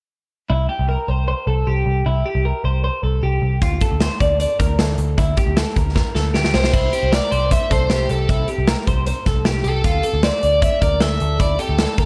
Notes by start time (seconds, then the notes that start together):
0.50 C2 E4
0.69 G4
0.79 C2
0.89 A#4
1.08 C2 C5
1.28 C5
1.47 C2 A4
1.67 C2 G4
1.86 C2
2.06 C2 E4
2.26 G4
2.35 C2
2.45 A#4
2.64 C2 C5
2.84 C5
3.03 C2 A4
3.23 C2 G4
3.42 C2
3.62 D2 F4, kick, closed hi-hat
3.81 A4, kick, closed hi-hat
3.91 D2
4.00 C5, snare, closed hi-hat
4.20 D2 D5, kick, closed hi-hat
4.40 D5, closed hi-hat
4.59 D2 A#4, kick, closed hi-hat
4.79 D2 A4, snare, closed hi-hat
4.98 D2, closed hi-hat
5.18 D2 E4, kick, closed hi-hat
5.37 G4, kick, closed hi-hat
5.47 D2
5.57 A4, snare, closed hi-hat
5.76 D2 A#4, kick, closed hi-hat
5.96 A#4, kick, snare
6.15 D2 A4, snare
6.34 D2 G4, snare
6.44 snare
6.54 C2 C5, snare
6.64 snare
6.73 C2 E4, kick, crash
6.93 G4, closed hi-hat
7.03 C2
7.12 A#4 D5, snare, closed hi-hat
7.31 C2 C5, closed hi-hat
7.51 C5 E5, kick, closed hi-hat
7.71 C2 A4 C5, kick, closed hi-hat
7.90 C2 G4, snare, closed hi-hat
8.09 C2 A4, closed hi-hat
8.29 C2 E4, kick, closed hi-hat
8.48 G4, closed hi-hat
8.58 C2
8.67 A#4, snare, closed hi-hat
8.87 C2 C5, kick, closed hi-hat
9.06 C5, closed hi-hat
9.26 C2 A4, kick, snare, closed hi-hat
9.45 C2 G4, snare, closed hi-hat
9.64 C2 A4, closed hi-hat
9.84 D2 F4, kick, closed hi-hat
10.03 A4, closed hi-hat
10.14 D2
10.23 C5 D5, snare, closed hi-hat
10.43 D2 D5, closed hi-hat
10.62 D5 E5, kick, closed hi-hat
10.81 D2 A#4 D5, kick, closed hi-hat
11.00 D2 A4 E5, snare, closed hi-hat
11.20 D2, closed hi-hat
11.40 D2 E4 D5, kick, closed hi-hat
11.59 G4 A4, closed hi-hat
11.69 D2
11.78 A4, snare, closed hi-hat
11.98 D2 A#4, kick, closed hi-hat